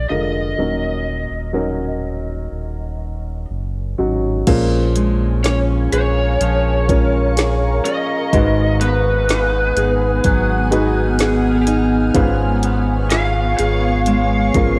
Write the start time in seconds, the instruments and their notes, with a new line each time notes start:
0.09 sub bass F1, grand piano D3 G#3 F4 A#4, lead electric guitar D#5
0.58 sub bass D#1, grand piano A#2 F#3 C#4 D#4 A#4
1.30 sub bass D#1
1.53 grand piano F#3 C#4 D#4 A#4
2.51 sub bass D#1
3.50 sub bass F#1
3.98 sub bass G#1, grand piano F#3 C#4 D#4 F#4
4.47 sub bass A#1, grand piano A#2 F3 G#3 C#4 F4 A#4, steel-string acoustic guitar A#2, ambient pad A#4 F5 G#5 C#6, kick, closed hi-hat, crash
4.95 steel-string acoustic guitar G#3, closed hi-hat
5.43 steel-string acoustic guitar C#4, lead electric guitar C#5, snare, closed hi-hat
5.92 sub bass A#1, steel-string acoustic guitar G#4, lead electric guitar C#5, closed hi-hat
6.40 sub bass A#1, steel-string acoustic guitar F3, ambient pad A#5, closed hi-hat
6.88 grand piano G#3 C#4 F4 A#4, steel-string acoustic guitar C#4, kick, closed hi-hat
7.37 steel-string acoustic guitar G#4, snare, closed hi-hat
7.85 steel-string acoustic guitar C#4, lead electric guitar D#5, closed hi-hat
8.32 sub bass G#1, grand piano G#2 D#3 G#3 D#4 F#4 B4, steel-string acoustic guitar G#2, ambient pad B3 F#5 G#5 D#6, kick, closed hi-hat
8.81 steel-string acoustic guitar B3, lead electric guitar B4, closed hi-hat
9.29 steel-string acoustic guitar D#4, snare, closed hi-hat
9.76 sub bass G#1, steel-string acoustic guitar G#4, closed hi-hat
10.24 sub bass G#1, steel-string acoustic guitar F#3, ambient pad F6, kick, closed hi-hat
10.71 grand piano G#3 D#4 F#4 B4, steel-string acoustic guitar D#4, closed hi-hat
11.19 steel-string acoustic guitar G#4, snare, closed hi-hat
11.67 steel-string acoustic guitar D#4, closed hi-hat
12.14 sub bass G#1, grand piano G#2 G#3 C#4 F4 B4, steel-string acoustic guitar G#2, ambient pad C#5 C#6, kick, closed hi-hat
12.63 steel-string acoustic guitar B3, closed hi-hat
13.10 steel-string acoustic guitar F4, lead electric guitar F5, snare, closed hi-hat
13.58 sub bass G#1, steel-string acoustic guitar G#4, lead electric guitar F5, closed hi-hat
14.06 steel-string acoustic guitar G#3, closed hi-hat
14.54 sub bass G#1, grand piano F3 G#3 C#4 A#4, steel-string acoustic guitar F4, kick, closed hi-hat